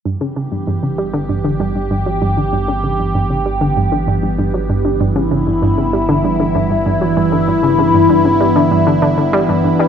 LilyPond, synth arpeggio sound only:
\new Staff \with { instrumentName = "Synth arpeggio sound" } { \clef bass \time 4/4 \key g \lydian \tempo 4 = 97 g,16 cis16 cis16 g,16 g,16 cis16 g16 d16 g,16 d16 g,16 g,16 g,16 fis16 g,16 d16 | g,16 cis16 cis16 g,16 g,16 cis16 g16 d16 g,16 d16 g,16 g,16 g,16 fis16 g,16 d16 | g,16 cis16 cis16 g,16 g,16 cis16 g16 d16 g,16 d16 g,16 g,16 g,16 fis16 g,16 d16 | g,16 cis16 cis16 g,16 g,16 cis16 g16 d16 g,16 d16 d16 d16 g16 g,16 g,16 g16 | }